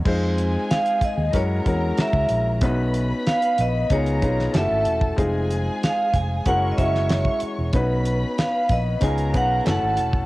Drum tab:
CC |x---------------|----------------|----------------|----------------|
HH |--x-xxx-x-x-x-x-|x-x-xxx-xxx-x-x-|x-x-x-x-x-x-x-x-|x-x-x-x-xxx-x-x-|
SD |----o---o---o---|----o------oo---|----o------oo---|----o---o---o---|
BD |o-----o-o-o--o--|o-------o-o----o|o-----o-o-o--o--|o-----o-o-o----o|